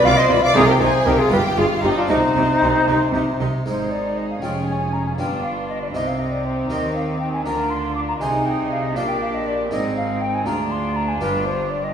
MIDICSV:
0, 0, Header, 1, 8, 480
1, 0, Start_track
1, 0, Key_signature, -3, "minor"
1, 0, Tempo, 514139
1, 513, Time_signature, 6, 3, 24, 8
1, 4363, Tempo, 502513
1, 11300, End_track
2, 0, Start_track
2, 0, Title_t, "Flute"
2, 0, Program_c, 0, 73
2, 46, Note_on_c, 0, 77, 102
2, 157, Note_on_c, 0, 75, 105
2, 171, Note_off_c, 0, 77, 0
2, 272, Note_off_c, 0, 75, 0
2, 277, Note_on_c, 0, 74, 100
2, 393, Note_on_c, 0, 77, 97
2, 407, Note_off_c, 0, 74, 0
2, 514, Note_on_c, 0, 68, 115
2, 528, Note_off_c, 0, 77, 0
2, 624, Note_off_c, 0, 68, 0
2, 630, Note_on_c, 0, 70, 79
2, 747, Note_on_c, 0, 72, 99
2, 761, Note_off_c, 0, 70, 0
2, 987, Note_on_c, 0, 70, 90
2, 1001, Note_off_c, 0, 72, 0
2, 1106, Note_on_c, 0, 68, 85
2, 1120, Note_off_c, 0, 70, 0
2, 1224, Note_off_c, 0, 68, 0
2, 1230, Note_on_c, 0, 71, 93
2, 1286, Note_off_c, 0, 71, 0
2, 1475, Note_on_c, 0, 68, 83
2, 1531, Note_off_c, 0, 68, 0
2, 1715, Note_on_c, 0, 67, 83
2, 1769, Note_off_c, 0, 67, 0
2, 1838, Note_on_c, 0, 65, 84
2, 1962, Note_on_c, 0, 63, 91
2, 1976, Note_off_c, 0, 65, 0
2, 3177, Note_off_c, 0, 63, 0
2, 3421, Note_on_c, 0, 72, 59
2, 3654, Note_on_c, 0, 74, 53
2, 3668, Note_off_c, 0, 72, 0
2, 3895, Note_on_c, 0, 75, 53
2, 3909, Note_off_c, 0, 74, 0
2, 4011, Note_off_c, 0, 75, 0
2, 4017, Note_on_c, 0, 77, 51
2, 4131, Note_on_c, 0, 79, 58
2, 4145, Note_off_c, 0, 77, 0
2, 4360, Note_off_c, 0, 79, 0
2, 4366, Note_on_c, 0, 80, 59
2, 4610, Note_on_c, 0, 82, 59
2, 4624, Note_off_c, 0, 80, 0
2, 4729, Note_off_c, 0, 82, 0
2, 4735, Note_on_c, 0, 80, 53
2, 4787, Note_off_c, 0, 80, 0
2, 4853, Note_on_c, 0, 79, 63
2, 5092, Note_on_c, 0, 77, 57
2, 5106, Note_off_c, 0, 79, 0
2, 5328, Note_off_c, 0, 77, 0
2, 5334, Note_on_c, 0, 75, 57
2, 5451, Note_off_c, 0, 75, 0
2, 5457, Note_on_c, 0, 74, 51
2, 5510, Note_off_c, 0, 74, 0
2, 5573, Note_on_c, 0, 75, 60
2, 5701, Note_on_c, 0, 77, 55
2, 5715, Note_off_c, 0, 75, 0
2, 5819, Note_on_c, 0, 75, 54
2, 5833, Note_off_c, 0, 77, 0
2, 5935, Note_on_c, 0, 74, 54
2, 5949, Note_off_c, 0, 75, 0
2, 6058, Note_on_c, 0, 72, 55
2, 6073, Note_off_c, 0, 74, 0
2, 6293, Note_off_c, 0, 72, 0
2, 6299, Note_on_c, 0, 75, 64
2, 6530, Note_off_c, 0, 75, 0
2, 6535, Note_on_c, 0, 77, 60
2, 6769, Note_off_c, 0, 77, 0
2, 6774, Note_on_c, 0, 79, 61
2, 6893, Note_off_c, 0, 79, 0
2, 6898, Note_on_c, 0, 80, 56
2, 7009, Note_off_c, 0, 80, 0
2, 7014, Note_on_c, 0, 82, 62
2, 7256, Note_on_c, 0, 84, 64
2, 7270, Note_off_c, 0, 82, 0
2, 7488, Note_off_c, 0, 84, 0
2, 7494, Note_on_c, 0, 86, 65
2, 7549, Note_off_c, 0, 86, 0
2, 7619, Note_on_c, 0, 82, 64
2, 7673, Note_off_c, 0, 82, 0
2, 7737, Note_on_c, 0, 80, 69
2, 7978, Note_on_c, 0, 79, 66
2, 7992, Note_off_c, 0, 80, 0
2, 8211, Note_off_c, 0, 79, 0
2, 8217, Note_on_c, 0, 77, 64
2, 8338, Note_on_c, 0, 75, 62
2, 8352, Note_off_c, 0, 77, 0
2, 8456, Note_on_c, 0, 77, 71
2, 8470, Note_off_c, 0, 75, 0
2, 8576, Note_on_c, 0, 79, 65
2, 8590, Note_off_c, 0, 77, 0
2, 8693, Note_off_c, 0, 79, 0
2, 8698, Note_on_c, 0, 77, 65
2, 8824, Note_on_c, 0, 75, 64
2, 8838, Note_off_c, 0, 77, 0
2, 8942, Note_on_c, 0, 74, 61
2, 8956, Note_off_c, 0, 75, 0
2, 9177, Note_off_c, 0, 74, 0
2, 9183, Note_on_c, 0, 75, 77
2, 9411, Note_off_c, 0, 75, 0
2, 9417, Note_on_c, 0, 77, 71
2, 9656, Note_on_c, 0, 79, 67
2, 9670, Note_off_c, 0, 77, 0
2, 9781, Note_on_c, 0, 80, 65
2, 9795, Note_off_c, 0, 79, 0
2, 9895, Note_on_c, 0, 82, 72
2, 9910, Note_off_c, 0, 80, 0
2, 10132, Note_on_c, 0, 84, 69
2, 10146, Note_off_c, 0, 82, 0
2, 10368, Note_on_c, 0, 82, 76
2, 10382, Note_off_c, 0, 84, 0
2, 10487, Note_on_c, 0, 80, 68
2, 10501, Note_off_c, 0, 82, 0
2, 10596, Note_off_c, 0, 80, 0
2, 10601, Note_on_c, 0, 71, 73
2, 10844, Note_on_c, 0, 72, 72
2, 10858, Note_off_c, 0, 71, 0
2, 11082, Note_on_c, 0, 74, 66
2, 11097, Note_off_c, 0, 72, 0
2, 11208, Note_on_c, 0, 75, 64
2, 11223, Note_off_c, 0, 74, 0
2, 11300, Note_off_c, 0, 75, 0
2, 11300, End_track
3, 0, Start_track
3, 0, Title_t, "Violin section"
3, 0, Program_c, 1, 48
3, 52, Note_on_c, 1, 86, 118
3, 162, Note_off_c, 1, 86, 0
3, 173, Note_on_c, 1, 84, 114
3, 284, Note_off_c, 1, 84, 0
3, 286, Note_on_c, 1, 83, 120
3, 399, Note_off_c, 1, 83, 0
3, 406, Note_on_c, 1, 86, 117
3, 516, Note_off_c, 1, 86, 0
3, 520, Note_on_c, 1, 77, 112
3, 632, Note_off_c, 1, 77, 0
3, 641, Note_on_c, 1, 79, 98
3, 754, Note_off_c, 1, 79, 0
3, 760, Note_on_c, 1, 80, 112
3, 993, Note_off_c, 1, 80, 0
3, 998, Note_on_c, 1, 79, 98
3, 1112, Note_off_c, 1, 79, 0
3, 1116, Note_on_c, 1, 77, 105
3, 1229, Note_on_c, 1, 79, 115
3, 1232, Note_off_c, 1, 77, 0
3, 1470, Note_off_c, 1, 79, 0
3, 1470, Note_on_c, 1, 77, 106
3, 1713, Note_off_c, 1, 77, 0
3, 1719, Note_on_c, 1, 75, 102
3, 1838, Note_off_c, 1, 75, 0
3, 1839, Note_on_c, 1, 74, 91
3, 1959, Note_off_c, 1, 74, 0
3, 1960, Note_on_c, 1, 72, 103
3, 3151, Note_off_c, 1, 72, 0
3, 3415, Note_on_c, 1, 72, 40
3, 4090, Note_off_c, 1, 72, 0
3, 4123, Note_on_c, 1, 73, 42
3, 4846, Note_off_c, 1, 73, 0
3, 4848, Note_on_c, 1, 71, 39
3, 5558, Note_off_c, 1, 71, 0
3, 5581, Note_on_c, 1, 67, 50
3, 7017, Note_on_c, 1, 70, 48
3, 7021, Note_off_c, 1, 67, 0
3, 7735, Note_on_c, 1, 72, 47
3, 7739, Note_off_c, 1, 70, 0
3, 8455, Note_off_c, 1, 72, 0
3, 8455, Note_on_c, 1, 74, 53
3, 9177, Note_off_c, 1, 74, 0
3, 9179, Note_on_c, 1, 68, 54
3, 10578, Note_off_c, 1, 68, 0
3, 10606, Note_on_c, 1, 67, 56
3, 11300, Note_off_c, 1, 67, 0
3, 11300, End_track
4, 0, Start_track
4, 0, Title_t, "Violin section"
4, 0, Program_c, 2, 48
4, 49, Note_on_c, 2, 74, 94
4, 163, Note_off_c, 2, 74, 0
4, 166, Note_on_c, 2, 72, 95
4, 281, Note_off_c, 2, 72, 0
4, 282, Note_on_c, 2, 71, 99
4, 397, Note_off_c, 2, 71, 0
4, 399, Note_on_c, 2, 74, 105
4, 513, Note_off_c, 2, 74, 0
4, 513, Note_on_c, 2, 65, 121
4, 631, Note_off_c, 2, 65, 0
4, 636, Note_on_c, 2, 67, 78
4, 682, Note_off_c, 2, 67, 0
4, 754, Note_on_c, 2, 68, 92
4, 985, Note_off_c, 2, 68, 0
4, 989, Note_on_c, 2, 67, 94
4, 1106, Note_on_c, 2, 65, 88
4, 1108, Note_off_c, 2, 67, 0
4, 1225, Note_on_c, 2, 67, 93
4, 1227, Note_off_c, 2, 65, 0
4, 1467, Note_off_c, 2, 67, 0
4, 1467, Note_on_c, 2, 65, 84
4, 1711, Note_off_c, 2, 65, 0
4, 1712, Note_on_c, 2, 63, 95
4, 1834, Note_off_c, 2, 63, 0
4, 1836, Note_on_c, 2, 62, 82
4, 1954, Note_on_c, 2, 60, 89
4, 1958, Note_off_c, 2, 62, 0
4, 3173, Note_off_c, 2, 60, 0
4, 3418, Note_on_c, 2, 68, 43
4, 4811, Note_off_c, 2, 68, 0
4, 4847, Note_on_c, 2, 65, 45
4, 5572, Note_off_c, 2, 65, 0
4, 5572, Note_on_c, 2, 63, 45
4, 7017, Note_off_c, 2, 63, 0
4, 7021, Note_on_c, 2, 65, 44
4, 7741, Note_off_c, 2, 65, 0
4, 7744, Note_on_c, 2, 68, 49
4, 8445, Note_off_c, 2, 68, 0
4, 8459, Note_on_c, 2, 67, 48
4, 9178, Note_off_c, 2, 67, 0
4, 9183, Note_on_c, 2, 63, 51
4, 9881, Note_off_c, 2, 63, 0
4, 9891, Note_on_c, 2, 65, 54
4, 11300, Note_off_c, 2, 65, 0
4, 11300, End_track
5, 0, Start_track
5, 0, Title_t, "Viola section"
5, 0, Program_c, 3, 48
5, 44, Note_on_c, 3, 65, 75
5, 118, Note_off_c, 3, 65, 0
5, 282, Note_on_c, 3, 65, 76
5, 356, Note_off_c, 3, 65, 0
5, 517, Note_on_c, 3, 63, 85
5, 592, Note_off_c, 3, 63, 0
5, 757, Note_on_c, 3, 63, 72
5, 831, Note_off_c, 3, 63, 0
5, 994, Note_on_c, 3, 63, 69
5, 1069, Note_off_c, 3, 63, 0
5, 1230, Note_on_c, 3, 65, 70
5, 1305, Note_off_c, 3, 65, 0
5, 1470, Note_on_c, 3, 65, 61
5, 1545, Note_off_c, 3, 65, 0
5, 1712, Note_on_c, 3, 65, 65
5, 1787, Note_off_c, 3, 65, 0
5, 1957, Note_on_c, 3, 63, 81
5, 2032, Note_off_c, 3, 63, 0
5, 2204, Note_on_c, 3, 63, 59
5, 2279, Note_off_c, 3, 63, 0
5, 2446, Note_on_c, 3, 63, 66
5, 2521, Note_off_c, 3, 63, 0
5, 2695, Note_on_c, 3, 63, 66
5, 2770, Note_off_c, 3, 63, 0
5, 2940, Note_on_c, 3, 63, 59
5, 3014, Note_off_c, 3, 63, 0
5, 3179, Note_on_c, 3, 63, 63
5, 3254, Note_off_c, 3, 63, 0
5, 3413, Note_on_c, 3, 63, 41
5, 4088, Note_off_c, 3, 63, 0
5, 4128, Note_on_c, 3, 61, 39
5, 4848, Note_off_c, 3, 61, 0
5, 4850, Note_on_c, 3, 62, 42
5, 5559, Note_off_c, 3, 62, 0
5, 5573, Note_on_c, 3, 60, 44
5, 7017, Note_off_c, 3, 60, 0
5, 7018, Note_on_c, 3, 62, 45
5, 7739, Note_off_c, 3, 62, 0
5, 7741, Note_on_c, 3, 63, 52
5, 8444, Note_off_c, 3, 63, 0
5, 8456, Note_on_c, 3, 62, 45
5, 9177, Note_off_c, 3, 62, 0
5, 9177, Note_on_c, 3, 60, 52
5, 9878, Note_off_c, 3, 60, 0
5, 9893, Note_on_c, 3, 62, 50
5, 11300, Note_off_c, 3, 62, 0
5, 11300, End_track
6, 0, Start_track
6, 0, Title_t, "Harpsichord"
6, 0, Program_c, 4, 6
6, 0, Note_on_c, 4, 62, 71
6, 0, Note_on_c, 4, 65, 63
6, 46, Note_on_c, 4, 48, 76
6, 256, Note_off_c, 4, 48, 0
6, 280, Note_on_c, 4, 48, 78
6, 479, Note_off_c, 4, 62, 0
6, 487, Note_off_c, 4, 65, 0
6, 488, Note_on_c, 4, 60, 67
6, 491, Note_off_c, 4, 48, 0
6, 503, Note_on_c, 4, 63, 68
6, 518, Note_on_c, 4, 48, 77
6, 729, Note_off_c, 4, 48, 0
6, 755, Note_on_c, 4, 48, 74
6, 967, Note_off_c, 4, 48, 0
6, 989, Note_on_c, 4, 48, 68
6, 1193, Note_off_c, 4, 60, 0
6, 1201, Note_off_c, 4, 63, 0
6, 1201, Note_on_c, 4, 59, 60
6, 1204, Note_off_c, 4, 48, 0
6, 1217, Note_on_c, 4, 65, 60
6, 1228, Note_on_c, 4, 43, 69
6, 1445, Note_off_c, 4, 43, 0
6, 1472, Note_on_c, 4, 43, 68
6, 1689, Note_off_c, 4, 43, 0
6, 1714, Note_on_c, 4, 43, 67
6, 1921, Note_off_c, 4, 59, 0
6, 1929, Note_off_c, 4, 65, 0
6, 1930, Note_on_c, 4, 60, 57
6, 1933, Note_off_c, 4, 43, 0
6, 1946, Note_on_c, 4, 63, 63
6, 1960, Note_on_c, 4, 48, 65
6, 2180, Note_off_c, 4, 48, 0
6, 2205, Note_on_c, 4, 48, 64
6, 2423, Note_off_c, 4, 48, 0
6, 2446, Note_on_c, 4, 48, 63
6, 2665, Note_off_c, 4, 48, 0
6, 2690, Note_on_c, 4, 48, 64
6, 2908, Note_off_c, 4, 48, 0
6, 2934, Note_on_c, 4, 48, 63
6, 3151, Note_off_c, 4, 48, 0
6, 3178, Note_on_c, 4, 48, 68
6, 3364, Note_off_c, 4, 60, 0
6, 3372, Note_off_c, 4, 63, 0
6, 3393, Note_off_c, 4, 48, 0
6, 3415, Note_on_c, 4, 56, 29
6, 3419, Note_on_c, 4, 44, 36
6, 3424, Note_on_c, 4, 60, 28
6, 3427, Note_on_c, 4, 63, 29
6, 4089, Note_off_c, 4, 56, 0
6, 4091, Note_off_c, 4, 44, 0
6, 4094, Note_off_c, 4, 60, 0
6, 4096, Note_off_c, 4, 63, 0
6, 4128, Note_on_c, 4, 41, 34
6, 4128, Note_on_c, 4, 56, 30
6, 4134, Note_on_c, 4, 61, 29
6, 4141, Note_on_c, 4, 65, 28
6, 4810, Note_off_c, 4, 56, 0
6, 4811, Note_off_c, 4, 41, 0
6, 4813, Note_off_c, 4, 61, 0
6, 4817, Note_off_c, 4, 65, 0
6, 4850, Note_on_c, 4, 59, 31
6, 4851, Note_on_c, 4, 43, 37
6, 4858, Note_on_c, 4, 62, 29
6, 4864, Note_on_c, 4, 65, 29
6, 5535, Note_off_c, 4, 59, 0
6, 5536, Note_off_c, 4, 43, 0
6, 5539, Note_off_c, 4, 62, 0
6, 5542, Note_off_c, 4, 65, 0
6, 5575, Note_on_c, 4, 48, 37
6, 5578, Note_on_c, 4, 60, 29
6, 5581, Note_on_c, 4, 63, 28
6, 5585, Note_on_c, 4, 67, 29
6, 6260, Note_off_c, 4, 48, 0
6, 6261, Note_off_c, 4, 60, 0
6, 6263, Note_off_c, 4, 63, 0
6, 6265, Note_off_c, 4, 67, 0
6, 6296, Note_on_c, 4, 51, 39
6, 6299, Note_on_c, 4, 60, 31
6, 6301, Note_on_c, 4, 63, 31
6, 6307, Note_on_c, 4, 67, 30
6, 6978, Note_off_c, 4, 51, 0
6, 6980, Note_off_c, 4, 60, 0
6, 6981, Note_off_c, 4, 63, 0
6, 6984, Note_off_c, 4, 67, 0
6, 7022, Note_on_c, 4, 62, 31
6, 7023, Note_on_c, 4, 50, 40
6, 7030, Note_on_c, 4, 65, 31
6, 7034, Note_on_c, 4, 70, 32
6, 7703, Note_off_c, 4, 50, 0
6, 7703, Note_off_c, 4, 62, 0
6, 7707, Note_off_c, 4, 65, 0
6, 7709, Note_off_c, 4, 70, 0
6, 7740, Note_on_c, 4, 48, 43
6, 7742, Note_on_c, 4, 63, 35
6, 7746, Note_on_c, 4, 68, 34
6, 7753, Note_on_c, 4, 72, 34
6, 8419, Note_off_c, 4, 48, 0
6, 8420, Note_off_c, 4, 63, 0
6, 8422, Note_off_c, 4, 68, 0
6, 8426, Note_off_c, 4, 72, 0
6, 8459, Note_on_c, 4, 46, 41
6, 8460, Note_on_c, 4, 62, 32
6, 8464, Note_on_c, 4, 67, 34
6, 8470, Note_on_c, 4, 74, 33
6, 9140, Note_off_c, 4, 46, 0
6, 9141, Note_off_c, 4, 62, 0
6, 9143, Note_off_c, 4, 67, 0
6, 9146, Note_off_c, 4, 74, 0
6, 9174, Note_on_c, 4, 60, 34
6, 9175, Note_on_c, 4, 44, 46
6, 9181, Note_on_c, 4, 63, 36
6, 9185, Note_on_c, 4, 68, 36
6, 9853, Note_off_c, 4, 44, 0
6, 9853, Note_off_c, 4, 60, 0
6, 9856, Note_off_c, 4, 63, 0
6, 9858, Note_off_c, 4, 68, 0
6, 9889, Note_on_c, 4, 38, 47
6, 9891, Note_on_c, 4, 62, 37
6, 9899, Note_on_c, 4, 65, 37
6, 9902, Note_on_c, 4, 68, 33
6, 10566, Note_off_c, 4, 38, 0
6, 10567, Note_off_c, 4, 62, 0
6, 10571, Note_off_c, 4, 65, 0
6, 10573, Note_off_c, 4, 68, 0
6, 10605, Note_on_c, 4, 62, 39
6, 10606, Note_on_c, 4, 43, 47
6, 10610, Note_on_c, 4, 65, 39
6, 10616, Note_on_c, 4, 67, 38
6, 11287, Note_off_c, 4, 62, 0
6, 11288, Note_off_c, 4, 43, 0
6, 11290, Note_off_c, 4, 65, 0
6, 11293, Note_off_c, 4, 67, 0
6, 11300, End_track
7, 0, Start_track
7, 0, Title_t, "Cello section"
7, 0, Program_c, 5, 48
7, 45, Note_on_c, 5, 48, 89
7, 120, Note_off_c, 5, 48, 0
7, 277, Note_on_c, 5, 48, 81
7, 352, Note_off_c, 5, 48, 0
7, 514, Note_on_c, 5, 48, 98
7, 589, Note_off_c, 5, 48, 0
7, 750, Note_on_c, 5, 48, 86
7, 825, Note_off_c, 5, 48, 0
7, 989, Note_on_c, 5, 48, 80
7, 1063, Note_off_c, 5, 48, 0
7, 1227, Note_on_c, 5, 43, 81
7, 1302, Note_off_c, 5, 43, 0
7, 1469, Note_on_c, 5, 43, 82
7, 1544, Note_off_c, 5, 43, 0
7, 1713, Note_on_c, 5, 43, 74
7, 1787, Note_off_c, 5, 43, 0
7, 1959, Note_on_c, 5, 48, 89
7, 2033, Note_off_c, 5, 48, 0
7, 2203, Note_on_c, 5, 48, 77
7, 2278, Note_off_c, 5, 48, 0
7, 2446, Note_on_c, 5, 48, 73
7, 2521, Note_off_c, 5, 48, 0
7, 2690, Note_on_c, 5, 48, 81
7, 2765, Note_off_c, 5, 48, 0
7, 2928, Note_on_c, 5, 48, 79
7, 3003, Note_off_c, 5, 48, 0
7, 3175, Note_on_c, 5, 48, 71
7, 3249, Note_off_c, 5, 48, 0
7, 3414, Note_on_c, 5, 44, 46
7, 4089, Note_off_c, 5, 44, 0
7, 4127, Note_on_c, 5, 41, 47
7, 4833, Note_off_c, 5, 41, 0
7, 4850, Note_on_c, 5, 43, 48
7, 5573, Note_off_c, 5, 43, 0
7, 5573, Note_on_c, 5, 48, 49
7, 6295, Note_on_c, 5, 51, 50
7, 6297, Note_off_c, 5, 48, 0
7, 7001, Note_off_c, 5, 51, 0
7, 7015, Note_on_c, 5, 50, 50
7, 7737, Note_on_c, 5, 48, 52
7, 7738, Note_off_c, 5, 50, 0
7, 8442, Note_off_c, 5, 48, 0
7, 8455, Note_on_c, 5, 46, 50
7, 9176, Note_off_c, 5, 46, 0
7, 9178, Note_on_c, 5, 44, 55
7, 9892, Note_on_c, 5, 38, 58
7, 9893, Note_off_c, 5, 44, 0
7, 10604, Note_on_c, 5, 43, 62
7, 10606, Note_off_c, 5, 38, 0
7, 11300, Note_off_c, 5, 43, 0
7, 11300, End_track
8, 0, Start_track
8, 0, Title_t, "Double bass section"
8, 0, Program_c, 6, 48
8, 39, Note_on_c, 6, 36, 89
8, 114, Note_off_c, 6, 36, 0
8, 278, Note_on_c, 6, 36, 82
8, 353, Note_off_c, 6, 36, 0
8, 510, Note_on_c, 6, 36, 97
8, 584, Note_off_c, 6, 36, 0
8, 750, Note_on_c, 6, 36, 86
8, 825, Note_off_c, 6, 36, 0
8, 989, Note_on_c, 6, 36, 78
8, 1064, Note_off_c, 6, 36, 0
8, 1226, Note_on_c, 6, 31, 84
8, 1301, Note_off_c, 6, 31, 0
8, 1470, Note_on_c, 6, 31, 84
8, 1545, Note_off_c, 6, 31, 0
8, 1714, Note_on_c, 6, 31, 77
8, 1789, Note_off_c, 6, 31, 0
8, 1959, Note_on_c, 6, 36, 79
8, 2034, Note_off_c, 6, 36, 0
8, 2205, Note_on_c, 6, 36, 77
8, 2280, Note_off_c, 6, 36, 0
8, 2447, Note_on_c, 6, 36, 74
8, 2522, Note_off_c, 6, 36, 0
8, 2689, Note_on_c, 6, 36, 79
8, 2764, Note_off_c, 6, 36, 0
8, 2931, Note_on_c, 6, 36, 77
8, 3006, Note_off_c, 6, 36, 0
8, 3176, Note_on_c, 6, 36, 69
8, 3251, Note_off_c, 6, 36, 0
8, 3415, Note_on_c, 6, 32, 43
8, 4090, Note_off_c, 6, 32, 0
8, 4127, Note_on_c, 6, 29, 45
8, 4833, Note_off_c, 6, 29, 0
8, 4849, Note_on_c, 6, 31, 45
8, 5573, Note_off_c, 6, 31, 0
8, 5573, Note_on_c, 6, 36, 46
8, 6297, Note_off_c, 6, 36, 0
8, 6298, Note_on_c, 6, 39, 44
8, 7003, Note_off_c, 6, 39, 0
8, 7015, Note_on_c, 6, 38, 51
8, 7738, Note_off_c, 6, 38, 0
8, 7738, Note_on_c, 6, 36, 49
8, 8442, Note_off_c, 6, 36, 0
8, 8457, Note_on_c, 6, 34, 53
8, 9177, Note_off_c, 6, 34, 0
8, 9177, Note_on_c, 6, 32, 53
8, 9892, Note_off_c, 6, 32, 0
8, 9893, Note_on_c, 6, 38, 56
8, 10605, Note_on_c, 6, 31, 54
8, 10606, Note_off_c, 6, 38, 0
8, 11300, Note_off_c, 6, 31, 0
8, 11300, End_track
0, 0, End_of_file